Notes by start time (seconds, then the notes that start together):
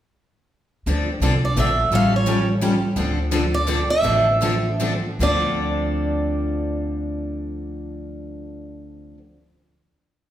0.86 D2 D3 F3 C4 D4 A4
1.20 C2 D3 F3 C4 D4 A4
1.45 D5
1.56 A#1 D3 F3 C4 D4 A4 E5
1.90 A1 F3 G3 C#4 G4 A4
1.95 F5
2.16 C#5
2.26 F3 G3 C#4 G4 A4
2.61 F3 G3 C#4 G4 A4
2.96 D2 D3 F3 C4 D4 A4
3.32 D3 F3 C4 D4 A4
3.54 D5
3.67 D3 F3 C4 D4 A4
3.90 E5
4.03 A1 D3 F3 C4 D4 A4
4.41 D3 F3 C4 D4 A4
4.80 D3 F3 C4 D4 A4
5.19 D2 D3 F3 C4 D4 A4 D5